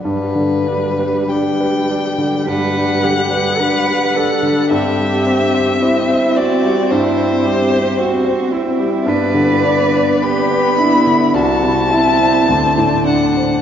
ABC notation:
X:1
M:4/4
L:1/16
Q:1/4=54
K:G
V:1 name="Violin"
B4 g4 f8 | e6 d2 c6 z2 | d4 b4 a6 f2 |]
V:2 name="Cello"
z8 B2 G2 B2 A2 | G4 E2 F2 E2 G2 F2 E2 | B4 G2 E2 F2 E2 D4 |]
V:3 name="Grand piano"
G,, D, D B D B D D, G,, D D, B D B D D, | G,, G, C c C c C G, G,, C G, c C c C G, | G,, D, D B D B D D, C,, C, E c D,, A,, D c |]
V:4 name="Viola"
G,16 | C16 | B,8 C8 |]